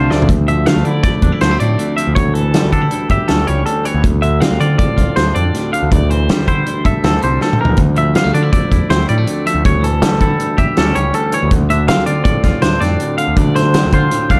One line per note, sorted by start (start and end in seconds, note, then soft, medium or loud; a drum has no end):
0.00 0.28 D2 medium
0.00 0.28 D3 medium
0.00 0.30 D3 medium
0.00 0.29 F3 medium
0.00 0.30 A3 loud
0.00 0.27 D4 medium
0.00 0.30 D4 loud
0.00 0.28 F4 medium
0.00 0.10 C5 medium
0.10 0.28 D2 medium
0.10 0.27 C4 medium
0.10 0.29 D5 medium
0.10 snare medium
0.22 floor tom medium
0.29 1.04 D2 medium
0.29 0.67 D2 medium
0.29 kick loud
0.29 closed hi-hat medium
0.48 1.97 F3 medium
0.48 0.66 E5 medium
0.48 closed hi-hat medium
0.66 0.74 D3 medium
0.66 1.43 A3 medium
0.66 0.85 F5 medium
0.66 snare loud
0.66 closed hi-hat medium
0.76 0.84 D2 medium
0.85 1.00 D3 medium
0.85 1.22 E4 medium
0.85 1.02 D5 medium
0.85 closed hi-hat soft
1.03 1.78 D2 medium
1.03 1.41 D5 medium
1.03 kick loud
1.03 snare soft
1.03 closed hi-hat medium
1.22 1.30 E2 medium
1.22 1.32 D4 medium
1.22 kick medium
1.22 closed hi-hat medium
1.32 2.17 E4 soft
1.41 1.57 D2 medium
1.41 1.51 A3 medium
1.41 1.59 C5 medium
1.41 snare loud
1.41 closed hi-hat medium
1.51 2.17 C4 soft
1.60 1.75 A2 medium
1.60 2.54 A3 medium
1.60 1.96 D5 medium
1.60 closed hi-hat medium
1.79 2.15 D2 medium
1.79 closed hi-hat medium
1.97 2.15 F3 medium
1.97 2.15 E5 medium
1.97 closed hi-hat medium
2.07 2.15 D2 medium
2.15 2.89 D2 medium
2.15 2.55 D2 medium
2.15 2.34 C#5 medium
2.15 kick loud
2.15 closed hi-hat medium
2.34 3.83 E3 medium
2.34 2.71 A4 medium
2.34 closed hi-hat medium
2.54 2.62 D3 medium
2.54 3.47 G3 medium
2.54 snare loud
2.54 closed hi-hat medium
2.64 2.71 D2 loud
2.72 2.88 D3 medium
2.72 2.82 D4 medium
2.72 3.10 A4 medium
2.72 kick medium
2.72 closed hi-hat medium
2.82 3.09 E4 soft
2.90 3.65 D2 medium
2.90 closed hi-hat medium
3.10 3.18 G1 medium
3.10 4.01 G4 medium
3.10 3.29 E5 medium
3.10 kick medium
3.10 closed hi-hat medium
3.28 3.44 D2 medium
3.28 4.02 C#4 medium
3.28 3.47 A4 medium
3.28 snare medium
3.28 closed hi-hat medium
3.47 3.63 C#2 medium
3.47 4.04 G3 medium
3.47 3.65 C#5 medium
3.47 closed hi-hat medium
3.66 4.01 D2 medium
3.66 3.85 A4 medium
3.66 closed hi-hat medium
3.84 4.01 E3 medium
3.84 4.04 C#5 medium
3.84 closed hi-hat medium
3.94 4.02 D2 medium
4.02 5.52 D2 medium
4.02 4.42 D2 medium
4.02 kick medium
4.02 closed hi-hat medium
4.22 5.71 D3 medium
4.22 4.40 E5 medium
4.22 closed hi-hat medium
4.40 4.49 D3 medium
4.40 5.34 C4 medium
4.40 4.60 F5 medium
4.40 snare loud
4.40 closed hi-hat medium
4.51 4.58 D2 medium
4.60 4.75 D3 medium
4.60 4.95 F4 medium
4.60 4.77 D5 medium
4.60 closed hi-hat medium
4.78 5.73 A2 medium
4.78 5.16 D5 medium
4.78 kick loud
4.78 closed hi-hat medium
4.97 5.05 C2 medium
4.97 5.89 F4 medium
4.97 kick medium
4.97 closed hi-hat medium
5.16 5.31 D2 medium
5.16 5.89 D4 medium
5.16 5.35 C5 medium
5.16 snare medium
5.16 closed hi-hat medium
5.35 5.50 F2 medium
5.35 5.93 C4 medium
5.35 5.73 D5 medium
5.35 closed hi-hat medium
5.53 5.89 D2 medium
5.53 snare soft
5.53 closed hi-hat medium
5.72 5.91 D3 medium
5.72 5.91 F5 medium
5.72 closed hi-hat medium
5.83 5.90 D2 medium
5.91 6.65 D2 medium
5.91 6.30 D2 medium
5.91 6.10 D5 medium
5.91 kick loud
5.91 closed hi-hat medium
6.09 7.59 E3 medium
6.09 6.47 C5 medium
6.09 closed hi-hat medium
6.29 6.37 D3 medium
6.29 7.20 G3 medium
6.29 snare loud
6.29 closed hi-hat medium
6.39 6.46 D2 medium
6.47 6.63 D3 medium
6.47 6.84 E4 medium
6.47 6.85 C5 medium
6.47 kick medium
6.47 closed hi-hat medium
6.66 7.40 D2 medium
6.66 closed hi-hat medium
6.84 6.92 G1 medium
6.84 8.18 A4 medium
6.84 7.04 E5 medium
6.84 kick medium
6.84 closed hi-hat medium
7.04 7.18 D2 medium
7.04 7.76 C4 medium
7.04 7.23 A4 medium
7.04 snare loud
7.04 closed hi-hat medium
7.21 7.38 C2 medium
7.21 7.78 G3 medium
7.21 7.42 C5 medium
7.21 closed hi-hat medium
7.41 7.76 D2 medium
7.41 7.60 A4 medium
7.41 snare soft
7.53 mid tom medium
7.60 7.80 E3 medium
7.60 7.79 A#4 medium
7.65 floor tom medium
7.70 7.77 D2 medium
7.77 8.52 D2 medium
7.77 8.17 D2 loud
7.77 kick loud
7.77 closed hi-hat medium
7.96 9.44 F3 medium
7.96 8.16 E5 medium
7.96 closed hi-hat medium
8.15 8.23 D3 medium
8.15 8.24 G3 medium
8.15 8.34 F5 medium
8.15 snare loud
8.15 closed hi-hat medium
8.24 8.33 D2 medium
8.24 9.08 A3 soft
8.33 8.49 D3 medium
8.33 8.43 D4 medium
8.33 8.51 D5 medium
8.33 closed hi-hat medium
8.43 8.70 E4 soft
8.53 9.25 D2 medium
8.53 8.90 D5 medium
8.53 kick medium
8.53 closed hi-hat medium
8.71 8.79 E2 medium
8.71 9.63 E4 medium
8.71 kick medium
8.71 closed hi-hat medium
8.90 9.05 D2 medium
8.90 9.63 C4 medium
8.90 9.08 C5 medium
8.90 snare loud
8.90 closed hi-hat medium
9.09 9.24 A2 medium
9.09 9.18 G3 medium
9.09 9.46 D5 medium
9.09 closed hi-hat medium
9.18 9.65 A3 soft
9.26 9.63 D2 medium
9.26 closed hi-hat medium
9.46 9.62 F3 medium
9.46 9.65 E5 medium
9.46 closed hi-hat medium
9.54 9.62 D2 medium
9.64 10.36 D2 medium
9.64 10.02 D2 medium
9.64 9.84 C#5 medium
9.64 kick loud
9.64 closed hi-hat medium
9.81 11.32 E3 medium
9.81 10.20 A4 medium
9.81 closed hi-hat medium
10.02 10.09 D3 medium
10.02 10.94 G3 medium
10.02 snare loud
10.02 closed hi-hat medium
10.12 10.19 D2 loud
10.21 10.36 D3 medium
10.21 10.57 E4 medium
10.21 10.58 A4 medium
10.21 kick medium
10.21 closed hi-hat medium
10.37 11.12 D2 medium
10.37 closed hi-hat medium
10.57 10.66 G1 medium
10.57 11.49 G4 medium
10.57 10.77 E5 medium
10.57 kick medium
10.57 closed hi-hat medium
10.77 10.92 D2 medium
10.77 11.49 C#4 medium
10.77 10.96 A4 medium
10.77 snare loud
10.77 closed hi-hat medium
10.95 11.10 C#2 medium
10.95 11.51 G3 medium
10.95 11.14 C#5 medium
10.95 closed hi-hat medium
11.13 11.50 D2 medium
11.13 11.33 A4 medium
11.13 closed hi-hat medium
11.32 11.49 E3 medium
11.32 11.52 C#5 medium
11.32 closed hi-hat medium
11.43 11.50 D2 medium
11.51 12.99 D2 medium
11.51 11.89 D2 medium
11.51 kick loud
11.51 closed hi-hat medium
11.70 13.18 D3 medium
11.70 11.88 E5 medium
11.70 closed hi-hat medium
11.88 11.96 D3 medium
11.88 12.81 C4 medium
11.88 12.06 F5 medium
11.88 snare loud
11.88 closed hi-hat loud
11.99 12.06 D2 medium
12.06 12.22 D3 medium
12.06 12.44 F4 medium
12.06 12.23 D5 medium
12.06 closed hi-hat medium
12.24 13.19 A2 medium
12.24 12.62 D5 medium
12.24 kick loud
12.24 closed hi-hat medium
12.44 12.52 C2 medium
12.44 13.95 F4 medium
12.44 kick medium
12.44 snare soft
12.44 closed hi-hat medium
12.62 12.77 D2 medium
12.62 13.78 D4 medium
12.62 12.81 C5 medium
12.62 snare loud
12.62 closed hi-hat medium
12.81 12.96 F2 medium
12.81 13.40 C4 medium
12.81 13.17 D5 medium
12.81 snare soft
12.81 closed hi-hat medium
13.00 13.36 D2 medium
13.00 closed hi-hat medium
13.18 13.54 D3 medium
13.18 13.37 F5 medium
13.18 closed hi-hat medium
13.28 13.35 D2 medium
13.36 13.76 D2 loud
13.36 14.40 D2 medium
13.36 13.56 D5 medium
13.36 kick loud
13.36 closed hi-hat medium
13.55 14.40 D3 medium
13.55 13.92 C5 medium
13.55 snare soft
13.55 closed hi-hat medium
13.74 13.83 D3 medium
13.74 14.40 C4 medium
13.74 snare loud
13.74 closed hi-hat medium
13.86 13.92 D2 loud
13.92 14.08 D3 medium
13.92 14.30 F4 medium
13.92 14.31 C5 medium
13.92 kick medium
13.92 closed hi-hat medium
14.11 14.40 A2 medium
14.11 closed hi-hat medium
14.30 14.38 C2 medium
14.30 14.39 D4 medium
14.30 14.40 F5 medium
14.30 kick medium
14.30 closed hi-hat medium